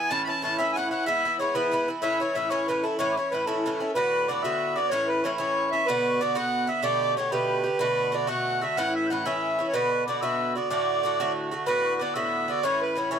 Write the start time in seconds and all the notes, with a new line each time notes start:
Already playing: G#5 G#6
0.10 A2 E3 C#4 E4 A5 A6
0.24 E4 B5 A6
0.28 E3 C#4 A5
0.42 A2 E3 C#4 E4 A5 A6
0.58 A2 E3 C#4 E4 E5 E6
0.72 A2 F#5 G#5
0.77 E3 C#4 E4 F#6
0.90 E3 C#4 E4 F#5 F#6
1.06 G#2 E3 B3 E4 E5 E6
1.25 E3 B3 E4
1.39 G#2 E3 B3 E4 C#5 C#6
1.55 G#2 E3 B3 E4 B4 B5
1.72 G#2 E3 B3 E4
1.88 E3 B3 E4
2.02 A2 E3 C#4 E4 E5 E6
2.20 E3 C#4 E4 C#5
2.34 A2 E3 C#4 E4 E5 E6
2.50 A2 E3 C#4 E4 C#5 C#6
2.68 A2 E3 C#4 E4 B4
2.83 E3 C#4 E4 A4 A5
2.98 A2 E3 C#4 E4 C#5 C#6
3.12 D6
3.16 C#4 E4 C#5 C#6
3.31 A2 E3 C#4 E4 B4 B5
3.46 A2 E3 C#4 E4 A4 A5
3.66 A2 E3 C#4 E4
3.80 E3 C#4 E4
3.95 A2 D3 B3 F#4 B4 B5
4.28 A2 D3 B3 F#4 D5 D6
4.43 A2 D3 B3 F#4 E5 E6
4.76 D3 B3 F#4 D5 D6
4.89 A2 E3 C#4 E4 C#5 C#6
5.08 B4 B5
5.23 A2 E3 C#4 E4 C#5 C#6
5.38 A2 E3 C#4 E4 C#5 C#6
5.71 E3 C#4 E4 E5
5.86 B2 D3 B3 F#4 B4 B5
6.05 C#6
6.21 B2 D3 B3 F#4 D5 D6
6.35 B2 D3 B3 F#4 F#5 F#6
6.67 D3 B3 F#4 E5 E6
6.83 B2 D3 A3 G4 D5 D6
7.02 D6
7.17 B2 D3 A3 G4 C#5 C#6
7.31 B2 D3 A3 G4 B4 B5
7.64 D3 A3 G4
7.79 B2 D3 A3 F#4 B4 B5
8.12 B2 D3 A3 F#4 D5
8.27 B2 D3 A3 F#4 F#5 F#6
8.61 D3 A3 F#4 E5 E6
8.77 A2 E3 C#4 E4 F#5 F#6
8.95 E5 E6
9.07 A2 F#5 F#6 G6
9.11 E3 C#4 E4
9.25 A2 E3 C#4 E4 E5 E6
9.59 E3 C#4 E4
9.68 C#5
9.73 B2 D3 B3 F#4 B4 B5
9.91 C#6
10.06 B2 D3 B3 D5 D6
10.10 F#4
10.21 B2 D3 B3 F#4 E5 E6
10.55 D3 B3 F#4 D5
10.70 A2 D3 A3 F#4 D5 D6
11.03 A2 D3 A3 F#4
11.20 A2 D3 A3 F#4
11.51 D3 A3 F#4
11.66 A2 D3 B3 F#4 B4 B5
11.84 C#6
11.99 A2 D3 B3 F#4 D5 D6
12.14 A2 D3 B3 F#4 E5 E6
12.48 D3 B3 F#4 D5
12.63 A2 E3 C#4 E4 C#5 C#6
12.81 B4 B5
12.95 A2 E3 C#4 E4 C#5
13.11 A2 E3 C#4 E4 C#5 C#6